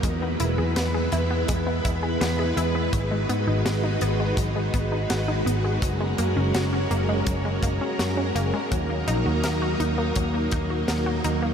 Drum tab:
HH |xxxxxxxx|xxxxxxxx|xxxxxxxx|xxxxxxxx|
SD |--o---o-|--o---o-|--o---o-|--o---o-|
BD |o---oo--|o---oo--|o---oo--|o---oo--|